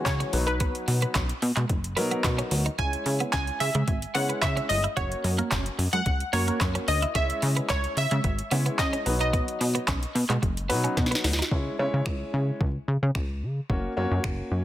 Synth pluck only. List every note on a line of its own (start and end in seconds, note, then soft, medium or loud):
0.05 0.48 C#5 loud
0.47 1.25 B4 medium
2.78 3.29 G#5 loud
3.32 3.61 G#5 loud
3.60 4.17 E5 loud
4.14 4.40 F#5 medium
4.42 4.70 E5 loud
4.69 4.82 D#5 loud
4.96 5.96 C#5 medium
5.93 6.34 F#5 loud
6.33 6.89 C#5 medium
6.88 7.16 D#5 medium
7.16 7.72 E5 loud
7.70 7.98 C#5 medium
7.98 8.75 E5 medium
8.79 9.20 D#5 medium
9.21 9.98 D#5 medium